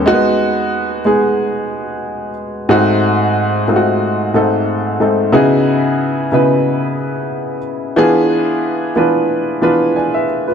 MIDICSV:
0, 0, Header, 1, 2, 480
1, 0, Start_track
1, 0, Key_signature, 4, "minor"
1, 0, Tempo, 659341
1, 36, Time_signature, 4, 2, 24, 8
1, 7675, End_track
2, 0, Start_track
2, 0, Title_t, "Grand piano"
2, 0, Program_c, 0, 0
2, 0, Control_c, 0, 64, 127
2, 42, Note_on_c, 0, 56, 108
2, 45, Control_c, 0, 64, 0
2, 46, Note_on_c, 0, 58, 77
2, 51, Note_on_c, 0, 63, 104
2, 55, Note_on_c, 0, 66, 124
2, 94, Note_on_c, 0, 59, 99
2, 96, Note_off_c, 0, 58, 0
2, 161, Control_c, 0, 64, 127
2, 726, Note_off_c, 0, 56, 0
2, 731, Note_off_c, 0, 63, 0
2, 733, Note_off_c, 0, 66, 0
2, 753, Note_off_c, 0, 59, 0
2, 764, Note_on_c, 0, 56, 82
2, 766, Note_on_c, 0, 59, 74
2, 772, Note_on_c, 0, 63, 75
2, 776, Note_on_c, 0, 68, 92
2, 1677, Note_off_c, 0, 56, 0
2, 1678, Note_off_c, 0, 59, 0
2, 1681, Note_off_c, 0, 63, 0
2, 1683, Note_off_c, 0, 68, 0
2, 1958, Note_on_c, 0, 44, 112
2, 1959, Note_on_c, 0, 57, 97
2, 1964, Note_on_c, 0, 60, 99
2, 1965, Control_c, 0, 64, 0
2, 1966, Note_on_c, 0, 63, 97
2, 1971, Note_on_c, 0, 66, 117
2, 2107, Control_c, 0, 64, 127
2, 2645, Note_off_c, 0, 44, 0
2, 2645, Note_off_c, 0, 57, 0
2, 2647, Note_off_c, 0, 60, 0
2, 2648, Note_off_c, 0, 63, 0
2, 2651, Note_off_c, 0, 66, 0
2, 2678, Note_on_c, 0, 44, 79
2, 2681, Note_on_c, 0, 57, 75
2, 2683, Note_on_c, 0, 60, 76
2, 2686, Note_on_c, 0, 63, 76
2, 2689, Note_on_c, 0, 65, 73
2, 2737, Note_off_c, 0, 65, 0
2, 2738, Note_on_c, 0, 66, 91
2, 3135, Note_off_c, 0, 44, 0
2, 3137, Note_off_c, 0, 57, 0
2, 3138, Note_off_c, 0, 60, 0
2, 3139, Note_off_c, 0, 63, 0
2, 3160, Note_on_c, 0, 44, 85
2, 3163, Note_on_c, 0, 57, 76
2, 3165, Note_off_c, 0, 66, 0
2, 3167, Note_on_c, 0, 60, 76
2, 3170, Note_on_c, 0, 63, 80
2, 3173, Note_on_c, 0, 69, 97
2, 3616, Note_off_c, 0, 44, 0
2, 3618, Note_off_c, 0, 57, 0
2, 3620, Note_off_c, 0, 60, 0
2, 3621, Note_off_c, 0, 63, 0
2, 3623, Note_off_c, 0, 69, 0
2, 3639, Note_on_c, 0, 44, 77
2, 3644, Note_on_c, 0, 57, 75
2, 3646, Note_on_c, 0, 60, 74
2, 3651, Note_on_c, 0, 63, 73
2, 3653, Note_on_c, 0, 69, 83
2, 3867, Note_off_c, 0, 44, 0
2, 3869, Note_off_c, 0, 57, 0
2, 3870, Note_off_c, 0, 60, 0
2, 3871, Note_off_c, 0, 63, 0
2, 3874, Note_off_c, 0, 69, 0
2, 3877, Note_on_c, 0, 49, 108
2, 3879, Note_on_c, 0, 59, 96
2, 3882, Note_on_c, 0, 63, 99
2, 3883, Note_on_c, 0, 64, 96
2, 3885, Note_on_c, 0, 66, 96
2, 3886, Control_c, 0, 64, 0
2, 3891, Note_on_c, 0, 68, 112
2, 4027, Control_c, 0, 64, 127
2, 4564, Note_off_c, 0, 49, 0
2, 4565, Note_off_c, 0, 59, 0
2, 4567, Note_off_c, 0, 63, 0
2, 4567, Note_off_c, 0, 64, 0
2, 4568, Note_off_c, 0, 66, 0
2, 4571, Note_off_c, 0, 68, 0
2, 4602, Note_on_c, 0, 49, 83
2, 4605, Note_on_c, 0, 59, 76
2, 4608, Note_on_c, 0, 63, 76
2, 4610, Note_on_c, 0, 64, 79
2, 4615, Note_on_c, 0, 66, 72
2, 4616, Note_on_c, 0, 71, 92
2, 5516, Note_off_c, 0, 49, 0
2, 5517, Note_off_c, 0, 59, 0
2, 5519, Note_off_c, 0, 63, 0
2, 5520, Note_off_c, 0, 64, 0
2, 5522, Note_off_c, 0, 66, 0
2, 5523, Note_off_c, 0, 71, 0
2, 5797, Note_on_c, 0, 52, 110
2, 5800, Note_on_c, 0, 59, 106
2, 5803, Note_on_c, 0, 62, 96
2, 5805, Control_c, 0, 64, 0
2, 5808, Note_on_c, 0, 65, 97
2, 5812, Note_on_c, 0, 68, 124
2, 5939, Control_c, 0, 64, 127
2, 6484, Note_off_c, 0, 52, 0
2, 6486, Note_off_c, 0, 59, 0
2, 6487, Note_off_c, 0, 62, 0
2, 6490, Note_off_c, 0, 65, 0
2, 6492, Note_off_c, 0, 68, 0
2, 6520, Note_on_c, 0, 52, 87
2, 6522, Note_on_c, 0, 59, 75
2, 6528, Note_on_c, 0, 62, 79
2, 6532, Note_on_c, 0, 65, 77
2, 6533, Note_on_c, 0, 71, 93
2, 6976, Note_off_c, 0, 52, 0
2, 6977, Note_off_c, 0, 59, 0
2, 6980, Note_off_c, 0, 62, 0
2, 6982, Note_off_c, 0, 65, 0
2, 6983, Note_off_c, 0, 71, 0
2, 7001, Note_on_c, 0, 52, 85
2, 7002, Note_on_c, 0, 59, 81
2, 7006, Note_on_c, 0, 62, 84
2, 7010, Note_on_c, 0, 65, 85
2, 7011, Note_on_c, 0, 71, 97
2, 7243, Note_off_c, 0, 65, 0
2, 7243, Note_off_c, 0, 71, 0
2, 7252, Note_on_c, 0, 80, 70
2, 7253, Note_on_c, 0, 74, 57
2, 7377, Note_off_c, 0, 74, 0
2, 7377, Note_off_c, 0, 80, 0
2, 7384, Note_on_c, 0, 76, 76
2, 7388, Note_on_c, 0, 71, 65
2, 7457, Note_off_c, 0, 52, 0
2, 7457, Note_off_c, 0, 59, 0
2, 7459, Note_off_c, 0, 62, 0
2, 7608, Note_off_c, 0, 76, 0
2, 7610, Note_off_c, 0, 71, 0
2, 7626, Note_on_c, 0, 71, 73
2, 7629, Note_on_c, 0, 65, 60
2, 7675, Note_off_c, 0, 65, 0
2, 7675, Note_off_c, 0, 71, 0
2, 7675, End_track
0, 0, End_of_file